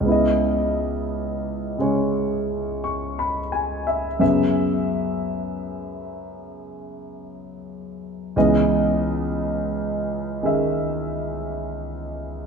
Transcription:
0.00 C#2 C#3
0.06 B3 E4
0.12 D#5
1.78 C#3 G#3 C#4 C#5
2.84 C#6
3.19 B5
3.52 G#5
3.87 E5
4.20 F#2 C#3 B3 G#4 E5
8.36 C#2 C#3 E3 B3 D#5
10.43 D#3 C#4 G#4 E5

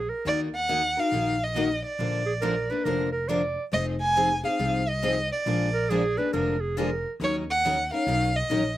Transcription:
Already playing: G#4
0.09 A#4
0.25 D#2 D#3 A#3 D#4 F#4 A#4 D5
0.55 F#5
0.69 D#3 A#3 D#4 F#4 A#4
0.97 D#4 F#4 A#4 F5
1.12 A#1 D#3 A#3 D#4 F#4 A#4
1.44 D#5
1.56 D#3 A#3 D#4 F#4 A#4
1.86 D5
1.99 A#1 D3 F3 A#3 D4 A#4
2.26 G#4
2.41 D3 F3 A#3 D4 A#4
2.70 A#3 D4 A#4 B4
2.84 F1 D3 F3 A#3 D4 A#4
3.12 A#4
3.28 D3 F3 A#3 D4 A#4 D5
3.72 F1 F3 C4 D#4 G#4 D#5
4.01 G#5
4.16 F3 C4 D#4 G#4
4.44 C4 D#4 G#4 F5
4.59 C2 F3 C4 D#4 G#4
4.89 D#5
5.02 F3 C4 D#4 G#4
5.32 D5
5.46 A#1 D3 F3 G#3 A#3 D4 F4 G#4 A#4
5.73 A#4
5.90 D3 F3 G#3 A#3 D4 F4 G#4 A#4
6.17 A#3 D4 G#4 B4
6.33 F1 D3 F3 G#3 A#3 D4 F4 G#4 A#4
6.60 G#4
6.77 D3 F3 G#3 A#3 D4 F4 G#4 A#4
7.20 D#2 D#3 F#3 C#4 D#4 A#4
7.24 C#5
7.50 F#5
7.65 D#3 F#3 C#4 D#4 A#4
7.92 C#4 D#4 A#4 F5
8.07 B1 D#3 F#3 C#4 D#4 A#4
8.35 D#5
8.50 A#1 D#3 F#3 C#4 D#4 A#4

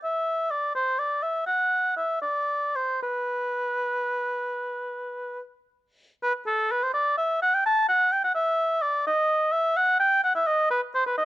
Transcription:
0.04 E5
0.51 D5
0.75 C5
0.99 D5
1.22 E5
1.46 F#5
1.96 E5
2.21 D5
2.76 C5
3.03 B4
6.23 B4
6.47 A4
6.71 B4
6.83 C5
6.94 D5
7.17 E5
7.42 F#5
7.54 G5
7.66 A5
7.89 F#5
8.12 G5
8.24 F#5
8.35 E5
8.82 D5
9.06 D#5
9.52 E5
9.77 F#5
10.00 G5
10.24 F#5
10.35 E5
10.47 D#5
10.71 B4
10.94 C5
11.06 B4
11.18 D#5

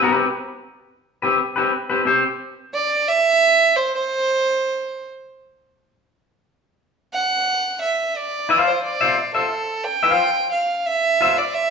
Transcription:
0.03 C4 G4 B4
1.22 C4 G4 B4
1.56 C4 G4 B4
1.90 C4 G4 B4
2.06 C4 G4 C5
2.74 D5
3.08 E5
3.76 C5
3.95 C5
7.14 F#5
7.82 E5
8.16 D5
8.49 F4 C5 F5
8.67 C5
8.83 D5
9.01 F4 C5 E5
9.35 F4 A4 C5 E5
9.84 G5
10.03 F4 C5 F5
10.52 F5
10.86 E5
11.21 F4 C5 E5
11.38 D5
11.54 E5

